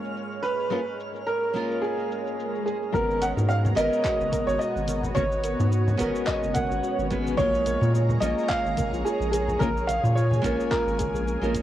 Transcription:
Already playing: nylon-string guitar G#3 A#3 C#4 F4 A#4, analog synth pad G#3 G#4 C#5, synth texture F6
0.04 cabasa
0.17 cabasa
0.32 cabasa
0.42 grand piano B4, cabasa
0.60 cabasa
0.70 nylon-string guitar G#3 A#3 C#4 F4 A#4, analog synth pad A#4, cabasa
0.87 cabasa
1.00 cabasa
1.16 cabasa
1.26 grand piano A#4, cabasa
1.43 cabasa
1.53 nylon-string guitar G#3 A#3 C#4 F4 A#4, cabasa
1.71 cabasa
1.81 grand piano G#4, swell, cabasa
1.99 cabasa
2.11 cabasa
2.27 cabasa
2.40 cabasa
2.55 cabasa
2.66 grand piano G#4, cabasa
2.83 cabasa
2.92 analog synth bass G#1, nylon-string guitar G#3 B3 C#4 A#4, analog synth pad B3 F#4 C#5 A#5, synth arpeggio sound F#4, grand piano A#4, kick, high conga, cabasa
3.11 cabasa
3.21 synth arpeggio sound A#4, grand piano F#5, closed hi-hat, muted conga, cabasa
3.37 analog synth bass G#2, synth arpeggio sound F#4, low conga, cabasa
3.49 synth arpeggio sound F#4, grand piano F5, cabasa
3.65 high conga, low conga, cabasa
3.75 analog synth bass G#1, nylon-string guitar G#3 B3 C#4 A#4, synth arpeggio sound A#4, grand piano D#5, closed hi-hat, cabasa
3.93 cabasa
4.05 synth arpeggio sound F#4, kick, clap, cabasa
4.21 analog synth bass F#1, cabasa
4.33 synth arpeggio sound A#4, kick, closed hi-hat, high conga, cabasa
4.47 analog synth bass G#1, synth arpeggio sound F#4, grand piano C#5, cabasa
4.59 synth arpeggio sound F#4, grand piano D#5, cabasa
4.76 analog synth bass G#1, cabasa
4.88 synth arpeggio sound A#4, closed hi-hat, muted conga, cabasa
5.04 low conga, cabasa
5.15 analog synth bass G#1, nylon-string guitar G#3 B3 C#4 F#4 A#4, synth arpeggio sound F#4, grand piano C#5, kick, high conga, cabasa
5.32 cabasa
5.44 synth arpeggio sound A#4, closed hi-hat, cabasa
5.59 analog synth bass G#2, synth arpeggio sound F#4, low conga, cabasa
5.72 synth arpeggio sound F#4, cabasa
5.88 high conga, low conga, cabasa
5.97 analog synth bass G#1, nylon-string guitar G#3 B3 C#4 F#4 A#4, synth arpeggio sound A#4, kick, closed hi-hat, cabasa
6.15 cabasa
6.27 synth arpeggio sound F#4, grand piano D#5, kick, clap, cabasa
6.43 analog synth bass F#1, cabasa
6.54 synth arpeggio sound A#4, grand piano F#5, kick, closed hi-hat, high conga, cabasa
6.71 analog synth bass G#1, synth arpeggio sound F#4, muted conga, cabasa
6.83 synth arpeggio sound F#4, cabasa
6.98 analog synth bass G#1, cabasa
7.10 nylon-string guitar G#3 B3 C#4 F#4 B4, synth arpeggio sound A#4, kick, closed hi-hat, cabasa
7.27 muted conga, cabasa
7.37 analog synth bass A#1, nylon-string guitar G#3 A#3 C#4 F4 A#4, synth arpeggio sound F4, analog synth pad G#4 A#5, grand piano C#5, kick, high conga, cabasa
7.55 cabasa
7.66 synth arpeggio sound A#4, closed hi-hat, muted conga, cabasa
7.81 analog synth bass A#2, synth arpeggio sound F4, low conga, cabasa
7.94 synth arpeggio sound F4, cabasa
8.09 high conga, low conga, cabasa
8.20 analog synth bass A#1, nylon-string guitar G#3 A#3 C#4 F4 A#4, synth arpeggio sound A#4, grand piano D#5, closed hi-hat, cabasa
8.38 cabasa
8.49 synth arpeggio sound F4, grand piano F5, kick, clap, cabasa
8.65 analog synth bass G#1, cabasa
8.77 synth arpeggio sound A#4, kick, closed hi-hat, high conga, cabasa
8.93 analog synth bass A#1, synth arpeggio sound F4, cabasa
9.05 synth arpeggio sound F4, grand piano G#4, cabasa
9.20 analog synth bass A#1, cabasa
9.32 grand piano G#4, synth arpeggio sound A#4, closed hi-hat, muted conga, cabasa
9.48 low conga, cabasa
9.59 analog synth bass A#1, nylon-string guitar G#3 A#3 C#4 F4 A#4, synth arpeggio sound F4, grand piano A#4, analog synth pad G#5, kick, high conga, cabasa
9.77 cabasa
9.87 synth arpeggio sound A#4, grand piano F5, closed hi-hat, muted conga, cabasa
10.03 analog synth bass A#2, synth arpeggio sound F4, low conga, cabasa
10.15 synth arpeggio sound F4, grand piano C#5, cabasa
10.31 high conga, low conga, cabasa
10.42 analog synth bass A#1, nylon-string guitar G#3 A#3 C#4 F4 A#4, synth arpeggio sound A#4, kick, closed hi-hat, cabasa
10.60 cabasa
10.71 synth arpeggio sound F4, grand piano A#4, kick, clap, cabasa
10.87 analog synth bass G#1, cabasa
10.99 synth arpeggio sound G#4, kick, closed hi-hat, high conga, cabasa
11.14 analog synth bass A#1, synth arpeggio sound G#4, muted conga, cabasa
11.27 synth arpeggio sound A#4, cabasa
11.42 analog synth bass A#1, nylon-string guitar G#3 A#3 C#4 F4 A#4, cabasa
11.55 synth arpeggio sound F5, kick, closed hi-hat, cabasa

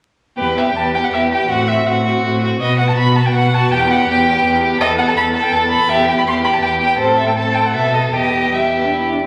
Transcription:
0.37 cello E2, viola B3, violin G4 B4
0.56 viola B3, violin G4 E5
0.67 violin G5
0.74 cello E2, viola B3, violin G4 A5
0.94 viola B3, violin G4 G5
1.04 violin F#5
1.13 cello E2, viola B3, violin G4 E5
1.32 viola B3, violin G4 G5
1.50 cello A2, viola C4, violin F#4 F#5
1.67 viola C4, violin F#4 E5
1.86 cello A2, viola C4, violin F#4 F#5
2.04 viola C4, violin F#4
2.23 cello A2, viola C4, violin F#4
2.41 viola C4, violin F#4
2.60 cello B2, viola B3, violin F#4 D#5
2.78 viola B3, violin F#4 F#5
2.89 violin A5
2.97 cello B2, viola B3, violin F#4 B5
3.15 viola B3, violin F#4 A5
3.26 violin G5
3.33 cello B2, viola B3, violin F#4 F#5
3.52 viola B3, violin F#4 A5
3.71 cello E2, viola B3, violin G4 G5
3.89 viola B3, violin G4 F#5
4.07 cello E2, viola B3, violin G4 G5
4.26 viola B3, violin G4
4.45 cello E2, viola B3, violin G4
4.63 viola B3, violin G4
4.81 cello E2, viola B3, violin A4 D#5
4.98 viola B3, violin A4 F#5
5.08 violin A5
5.17 cello E2, viola B3, violin A4 B5
5.35 viola B3, violin A4 A5
5.44 violin G5
5.52 cello E2, viola B3, violin A4 A5
5.71 viola B3, violin A4 B5
5.89 cello E2, viola B3, violin G4 E5
6.08 viola B3, violin G4 G5
6.18 violin B5
6.27 cello E2, viola B3, violin G4 C6
6.44 viola B3, violin G4 B5
6.53 violin A5
6.62 cello E2, viola B3, violin G4 G5
6.80 viola B3, violin G4 G5
6.98 cello A2, viola C4, violin A4 C5
7.17 violin E5
7.27 violin G5
7.35 viola C4, violin A4 A5
7.55 violin G5
7.66 violin F#5
7.74 cello B2, viola B3, violin A4 E5
7.93 violin D#5
8.13 cello E2, viola B3, violin G4 D#5
8.53 viola G3, violin G4 E5
8.73 viola B3
8.84 viola D4
8.93 viola E4
9.12 viola D4
9.23 viola C4

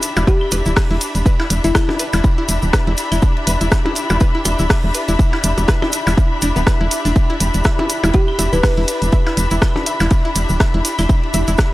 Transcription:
Already playing: string section D4 G4 E5 B5, synth drone E4
0.02 closed hi-hat, ride, cabasa
0.16 fm bass E1, synth pluck E4, percussion blips, cabasa
0.27 synth pluck G4, kick, ride, cabasa
0.41 claves
0.51 fm bass E1, synth pluck B4, closed hi-hat, ride, percussion blips, cabasa
0.66 fm bass D1, synth pluck E4, cabasa
0.76 kick, cross-stick, snare, open hi-hat, cabasa
0.90 fm bass E1, synth pluck E4
1.01 closed hi-hat, ride, cabasa
1.15 fm bass E1, closed hi-hat, cabasa
1.26 synth pluck B4, kick, ride, cabasa
1.40 synth pluck E4, snare, percussion blips
1.50 fm bass E1, closed hi-hat, ride, cabasa
1.64 fm bass E1, synth pluck E4, closed hi-hat, ride, cabasa
1.75 kick, cross-stick, snare, ride, cabasa, claves
1.89 snare, percussion blips
1.99 synth pluck B4, closed hi-hat, ride, cabasa
2.13 fm bass E1, synth pluck E4, snare, cabasa, percussion blips
2.24 kick, ride, cabasa
2.38 synth pluck E4
2.49 fm bass E1, closed hi-hat, ride, cabasa
2.62 fm bass D1, ride, cabasa
2.73 synth pluck B4, kick, cross-stick, snare, ride, cabasa
2.87 fm bass E1, synth pluck E4
2.97 snare, closed hi-hat, ride, cabasa
3.12 fm bass E1, synth pluck E4, snare, closed hi-hat, cabasa, claves
3.22 kick, ride, cabasa
3.37 ride
3.47 fm bass E1, synth pluck B4, closed hi-hat, ride, cabasa
3.61 fm bass E1, synth pluck E4, closed hi-hat, cabasa
3.72 kick, cross-stick, snare, ride, cabasa
3.86 synth pluck E4, percussion blips
3.95 closed hi-hat, ride, cabasa
4.10 fm bass E1, percussion blips, cabasa
4.20 synth pluck B4, kick, ride, cabasa
4.35 synth pluck E4
4.45 fm bass E1, closed hi-hat, ride, percussion blips, cabasa, claves
4.59 fm bass D1, synth pluck E4, cabasa
4.69 kick, cross-stick, snare, open hi-hat, cabasa
4.84 fm bass E1
4.94 synth pluck B4, closed hi-hat, ride, cabasa
5.08 fm bass E1, synth pluck E4, closed hi-hat, cabasa
5.19 kick, ride, cabasa
5.33 synth pluck E4, snare, percussion blips
5.44 fm bass E1, closed hi-hat, ride, cabasa
5.57 fm bass E1, closed hi-hat, ride, percussion blips, cabasa
5.68 synth pluck B4, kick, cross-stick, snare, ride, cabasa
5.82 synth pluck E4, snare, percussion blips, claves
5.92 closed hi-hat, ride, cabasa
6.07 fm bass E1, synth pluck E4, snare, cabasa, percussion blips
6.18 kick, ride, cabasa
6.42 fm bass E1, synth pluck D4, closed hi-hat, ride, cabasa
6.56 fm bass D1, synth pluck B3, ride, cabasa
6.67 synth pluck B4, kick, cross-stick, snare, ride, cabasa
6.81 fm bass E1, synth pluck E4
6.91 snare, closed hi-hat, ride, cabasa
7.05 fm bass E1, synth pluck D4, snare, closed hi-hat, cabasa
7.16 kick, ride, cabasa
7.30 synth pluck E4, ride
7.40 fm bass E1, closed hi-hat, ride, cabasa
7.54 fm bass E1, closed hi-hat, cabasa
7.64 synth pluck E5, kick, cross-stick, snare, ride, cabasa
7.79 synth pluck E4, percussion blips
7.90 closed hi-hat, ride, cabasa
8.04 fm bass E1, synth pluck E4, percussion blips, cabasa
8.13 synth pluck G4, kick, ride, cabasa
8.28 claves
8.39 fm bass E1, synth pluck E5, closed hi-hat, ride, percussion blips, cabasa
8.53 fm bass D1, synth pluck E4 B4, cabasa
8.63 synth pluck B4, kick, cross-stick, snare, open hi-hat, cabasa
8.77 fm bass E1, synth pluck E4
8.88 closed hi-hat, ride, cabasa
9.02 fm bass E1, closed hi-hat, cabasa
9.12 synth pluck E5, kick, ride, cabasa
9.27 synth pluck E4, snare, percussion blips
9.37 fm bass E1, closed hi-hat, ride, cabasa
9.51 fm bass E1, synth pluck E4, closed hi-hat, ride, cabasa
9.62 kick, cross-stick, snare, ride, cabasa, claves
9.76 snare, percussion blips
9.86 synth pluck E5, closed hi-hat, ride, cabasa
10.00 fm bass E1, synth pluck E4, snare, cabasa, percussion blips
10.11 kick, ride, cabasa
10.25 synth pluck E4
10.36 fm bass E1, closed hi-hat, ride, cabasa
10.49 fm bass D1, ride, cabasa
10.60 synth pluck E5, kick, cross-stick, snare, ride, cabasa
10.74 fm bass E1, synth pluck E4
10.85 snare, closed hi-hat, ride, cabasa
10.99 fm bass E1, synth pluck E4, snare, closed hi-hat, cabasa, claves
11.09 kick, ride, cabasa
11.23 ride
11.34 fm bass E1, synth pluck E5, closed hi-hat, ride, cabasa
11.48 fm bass E1, synth pluck E4, closed hi-hat, cabasa
11.58 kick, cross-stick, snare, ride, cabasa

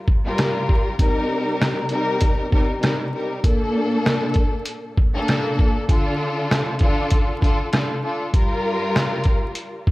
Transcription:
0.08 kick
0.25 string section G2 G3 F4 A#4
0.38 cross-stick, snare, closed hi-hat
0.69 kick
0.98 string section C3 G3 D#4 A#4, kick, closed hi-hat
1.61 cross-stick, snare, closed hi-hat
1.89 string section C3 G3 D#4 A#4, closed hi-hat
2.21 kick, closed hi-hat
2.51 string section C3 G3 D#4 A#4, kick
2.79 string section C3 G3 D#4 A#4, closed hi-hat
2.84 cross-stick, snare
3.12 string section C3 G3 D#4 A#4
3.43 string section A#2 A#3 D4 A4, kick, closed hi-hat
4.06 cross-stick, snare, closed hi-hat
4.34 kick, closed hi-hat
4.66 closed hi-hat
4.97 kick
5.14 string section A#2 A#3 D4 A4
5.28 cross-stick, snare, closed hi-hat
5.59 kick
5.88 string section D3 D4 F4 A4, kick, closed hi-hat
6.51 cross-stick, snare, closed hi-hat
6.79 string section D3 D4 F4 A4, kick, closed hi-hat
7.10 kick, closed hi-hat
7.40 string section D3 D4 F4 A4, kick, closed hi-hat
7.72 string section D3 D4 F4 A4, cross-stick, snare, closed hi-hat
8.02 string section D3 D4 F4 A4
8.32 string section G2 G3 F4 A#4, kick, closed hi-hat
8.96 cross-stick, snare, closed hi-hat
9.24 kick, closed hi-hat
9.55 closed hi-hat
9.87 kick

